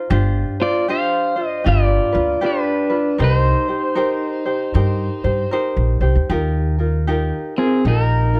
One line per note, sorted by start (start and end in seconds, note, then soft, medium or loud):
0.00 0.10 C5 soft
0.10 0.42 G1 loud
0.10 0.59 D4 medium
0.10 0.60 F4 medium
0.10 0.59 G4 medium
0.10 0.59 C5 medium
0.60 0.87 D4 soft
0.60 0.88 F4 soft
0.60 0.87 F4 medium
0.60 0.88 C5 medium
0.60 0.87 D5 medium
0.88 1.36 D4 medium
0.88 1.36 F4 medium
0.88 1.37 G4 medium
0.88 1.35 C5 medium
0.88 1.62 C5 medium
0.88 1.47 F5 loud
1.36 1.63 D4 soft
1.36 1.64 F4 soft
1.36 1.65 C5 soft
1.47 1.68 D#5 loud
1.64 1.98 G1 medium
1.64 2.13 D4 medium
1.64 2.12 F4 medium
1.64 2.40 F4 medium
1.64 2.14 G4 medium
1.64 2.11 B4 medium
1.68 2.46 D5 loud
2.12 2.33 D2 medium
2.12 2.41 D4 soft
2.12 2.41 F4 soft
2.12 2.41 B4 soft
2.41 2.90 D4 medium
2.41 3.17 D4 medium
2.41 2.89 F4 medium
2.41 2.91 G4 medium
2.41 2.88 B4 medium
2.46 3.24 B4 medium
2.90 3.18 D4 soft
2.90 3.19 F4 soft
2.90 3.19 B4 medium
3.18 3.52 C2 medium
3.18 3.68 D#4 medium
3.18 5.50 D#4 medium
3.18 3.68 G4 medium
3.18 3.68 A#4 medium
3.18 3.67 C5 medium
3.24 5.51 C5 medium
3.68 3.95 D#4 soft
3.68 3.95 G4 soft
3.68 3.96 C5 soft
3.95 4.46 D#4 medium
3.95 4.45 G4 medium
3.95 4.46 A#4 medium
3.95 4.44 C5 medium
4.46 4.74 D#4 soft
4.46 4.74 G4 soft
4.46 4.75 C5 medium
4.74 5.07 G2 medium
4.74 5.24 D#4 medium
4.74 5.24 G4 medium
4.74 5.24 A#4 medium
4.74 5.23 C5 medium
5.24 5.43 G2 medium
5.24 5.52 D#4 soft
5.24 5.51 G4 medium
5.24 5.51 C5 medium
5.51 6.02 D#4 medium
5.51 6.01 G4 medium
5.51 6.01 A#4 medium
5.51 6.00 C5 medium
5.77 5.99 A#1 medium
6.01 6.14 C2 medium
6.01 6.29 D#4 soft
6.01 6.28 G4 soft
6.01 6.30 C5 medium
6.15 6.28 D2 medium
6.29 7.31 D#2 medium
6.29 6.79 D#4 medium
6.29 6.78 F4 medium
6.29 6.78 G4 medium
6.29 6.77 A#4 medium
6.78 7.07 D#4 soft
6.78 7.08 F4 soft
6.78 7.07 A#4 soft
7.07 7.57 D#4 medium
7.07 7.57 F4 medium
7.07 7.57 G4 medium
7.07 7.56 A#4 medium
7.57 7.84 C4 medium
7.57 7.85 D#4 soft
7.57 7.85 F4 soft
7.57 7.87 G#4 medium
7.57 7.84 A#4 medium
7.85 8.40 A#1 medium
7.85 8.35 D#4 medium
7.85 8.40 D#4 medium
7.85 8.34 F4 medium
7.85 8.33 G4 medium
7.85 8.32 A#4 medium
7.85 8.40 A#4 medium
8.33 8.40 D#4 soft
8.33 8.40 F4 soft
8.33 8.40 A#4 soft